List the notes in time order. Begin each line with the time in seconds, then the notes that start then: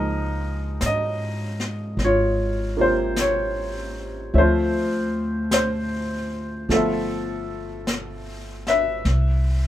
Already playing: C#2 F3 G#3 A#3 D#4 A#4 D#5
0.81 G#2, brush sweep, snare, hi-hat pedal
0.86 D#5
1.60 snare
1.97 G#1, brush sweep, snare
2.04 F4 C#5
2.77 C3 A#3 F4
2.81 C5
3.16 brush sweep, snare, hi-hat pedal
3.20 C#5
4.33 D2 F3 A3 C4 E5, brush sweep
4.38 F4 C5
5.51 C5, brush sweep, snare, hi-hat pedal
6.69 G1 F3 A3 B3 A4, brush sweep, snare
6.73 F4 E5
7.87 brush sweep, snare, hi-hat pedal
8.67 B4 E5, snare
9.05 C2, brush sweep, snare